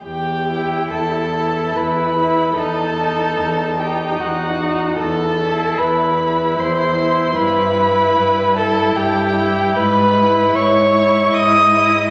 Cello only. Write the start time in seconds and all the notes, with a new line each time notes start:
0.05 E2
0.92 E2
1.77 E2
2.57 E2
3.39 E2
4.21 E2
5.00 E2
5.79 E2
6.59 E2
7.37 G2
8.17 G2
8.96 G2
9.75 G#2
10.56 G#2
11.34 G#2